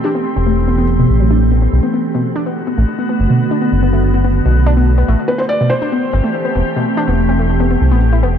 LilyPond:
<<
  \new Staff \with { instrumentName = "Felt piano" } { \time 4/4 \key a \dorian \tempo 4 = 143 g'2 r2 | r1 | r1 | r8 b'16 c''16 d''8 c''2~ c''8~ |
c''2. r4 | }
  \new Staff \with { instrumentName = "Ambient pad" } { \time 4/4 \key a \dorian << { <e c' g'>1 | <d b fis'>1~ | <d b fis'>1 | <e c' g'>1~ |
<e c' g'>1 | } \\ { a1~ | a1~ | a1 | a1~ |
a1 | } >> }
  \new Staff \with { instrumentName = "Synth arpeggio sound" } { \time 4/4 \key a \dorian d'16 b16 r16 c'16 a16 r16 b16 b16 r16 b,16 r16 fis16 d'16 r16 b16 b16 | r16 b16 b16 r16 b,16 r16 d'16 b16 r16 b16 a16 r16 b16 b16 r16 b,16 | r16 d'16 b16 r16 b16 a16 r16 b16 b16 r16 b,16 r16 d'16 b16 r16 b16 | a16 r16 b16 b16 r16 b,16 r16 d'16 b16 r16 c'16 a16 r16 b16 b16 r16 |
b,16 r16 d'16 b16 r16 c'16 a16 r16 b16 b16 r16 b16 r16 e'16 b16 r16 | }
  \new Staff \with { instrumentName = "Analog synth bass" } { \clef bass \time 4/4 \key a \dorian r8. e,,4.~ e,,16 a,,4. | b,,16 r2 r16 a,,16 r8. fis,,16 r16 | r8. fis,,4.~ fis,,16 b,,4. | a,,16 r2 r16 g,,16 r8. e,,16 r16 |
r8. e,,4.~ e,,16 c,16 a,,8. e,,16 r16 | }
>>